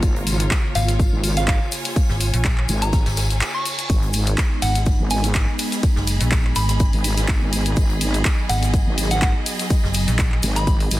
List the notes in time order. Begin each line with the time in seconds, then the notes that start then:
Already playing: C#3 A#3 F4 C#5 A#5
0.03 G#1, kick, closed hi-hat, tambourine, cabasa
0.16 closed hi-hat
0.27 open hi-hat, tambourine, cabasa
0.40 closed hi-hat, cabasa
0.51 kick, snare, clap, closed hi-hat, tambourine, cabasa
0.75 G#1 F5, open hi-hat, tambourine, cabasa
0.88 snare, closed hi-hat, cabasa
0.99 kick, closed hi-hat, tambourine, cabasa
1.10 G#1 G#5
1.24 open hi-hat, tambourine, cabasa
1.37 F5, snare, closed hi-hat, cabasa
1.48 F5, kick, snare, clap, closed hi-hat, tambourine, cabasa
1.72 open hi-hat, cabasa
1.85 snare, closed hi-hat, cabasa
1.96 kick, closed hi-hat, tambourine, cabasa
2.09 G#1, snare
2.21 open hi-hat, tambourine, cabasa
2.34 A#1, closed hi-hat, cabasa
2.44 kick, snare, clap, closed hi-hat, tambourine, cabasa
2.58 clap
2.69 G#1, open hi-hat, tambourine, cabasa
2.82 A#5, snare, closed hi-hat, cabasa
2.93 kick, snare, closed hi-hat, tambourine, reverse cymbal, cabasa
3.06 G#1, snare, open hi-hat, tambourine
3.17 snare, open hi-hat, tambourine, cabasa
3.30 snare, closed hi-hat, cabasa
3.41 snare, clap, closed hi-hat, tambourine, cabasa
3.54 C#6
3.65 open hi-hat, tambourine, cabasa
3.79 closed hi-hat, cabasa
3.90 G#1 G#3 B3 D#4 G#4, kick, closed hi-hat, ride, tambourine, cabasa
4.02 closed hi-hat
4.13 open hi-hat, ride, tambourine, cabasa
4.27 closed hi-hat, cabasa
4.32 D#5 B5
4.38 kick, snare, clap, closed hi-hat, ride, tambourine, cabasa
4.62 G#1 F#5, open hi-hat, ride, tambourine, cabasa
4.75 snare, closed hi-hat, cabasa
4.86 kick, closed hi-hat, ride, tambourine, cabasa
5.00 G#1
5.10 G#5, open hi-hat, ride, tambourine, cabasa
5.23 snare, closed hi-hat, cabasa
5.34 kick, snare, clap, closed hi-hat, ride, tambourine, cabasa
5.59 open hi-hat, ride, cabasa
5.72 snare, closed hi-hat, cabasa
5.83 kick, closed hi-hat, ride, tambourine, cabasa
5.96 F#1, snare
6.07 open hi-hat, ride, tambourine, cabasa
6.20 A#1, closed hi-hat, cabasa
6.31 kick, snare, clap, closed hi-hat, ride, tambourine, cabasa
6.45 clap
6.55 G#1 B5, open hi-hat, ride, tambourine, cabasa
6.68 B5, snare, closed hi-hat, cabasa
6.80 kick, closed hi-hat, ride, tambourine, cabasa
6.93 G#1, open hi-hat
7.04 open hi-hat, ride, tambourine, cabasa
7.17 snare, closed hi-hat, cabasa
7.28 kick, snare, clap, closed hi-hat, ride, tambourine, cabasa
7.42 G#1
7.53 open hi-hat, ride, tambourine, cabasa
7.66 closed hi-hat, cabasa
7.76 G#1 F#3, kick, closed hi-hat, ride, tambourine, cabasa
7.90 closed hi-hat
8.01 open hi-hat, ride, tambourine, cabasa
8.14 closed hi-hat, cabasa
8.25 kick, snare, clap, closed hi-hat, ride, tambourine, cabasa
8.49 G#1 F#5, open hi-hat, ride, tambourine, cabasa
8.63 snare, closed hi-hat, cabasa
8.74 kick, closed hi-hat, ride, tambourine, cabasa
8.87 G#1
8.98 open hi-hat, ride, tambourine, cabasa
9.11 F#5, snare, closed hi-hat, cabasa
9.22 F#5, kick, snare, clap, closed hi-hat, ride, tambourine, cabasa
9.46 open hi-hat, ride, cabasa
9.59 snare, closed hi-hat, cabasa
9.70 kick, closed hi-hat, ride, tambourine, cabasa
9.83 F#1, snare
9.94 open hi-hat, ride, tambourine, cabasa
10.08 A#1, closed hi-hat, cabasa
10.19 kick, snare, clap, closed hi-hat, ride, tambourine, cabasa
10.32 clap
10.43 G#1, open hi-hat, ride, tambourine, cabasa
10.56 B5, snare, closed hi-hat, cabasa
10.67 kick, closed hi-hat, ride, tambourine, cabasa
10.80 open hi-hat
10.91 G#1, open hi-hat, ride, tambourine, cabasa